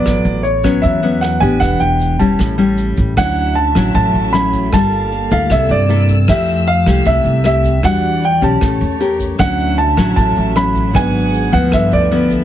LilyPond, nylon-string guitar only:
\new Staff \with { instrumentName = "Nylon-string guitar" } { \time 4/4 \key a \major \tempo 4 = 154 << { <fis b>4 r8 <fis b cis'>4 <fis b cis'>4 <b d' g'>8~ | <b d' g'>4. <g cis' e'>4 <g cis' e'>4. | \key d \major <fis cis' e'>4 r8 <fis cis' e'>4. <fis cis' e'>4 | <bes f' a'>4 r8 <bes e' a'>4. <bes e' a'>8 r8 |
<a e' g'>4 r8 <a e' g'>4. <a e' g'>8 r8 | <g d' fis'>4 r8 <cis' g'>4. <cis' g' bes'>4 | <fis cis' e'>4 r8 <fis cis' e'>4. <fis cis' e'>4 | <fis b d'>4. <f b e'>4. <f b e'>4 | } \\ { a,2 e2 | e2 a,2 | d2 a,2 | g2 c2 |
f2 c2 | e2 a2 | d2 a,2 | gis,2 g,2 | } >> }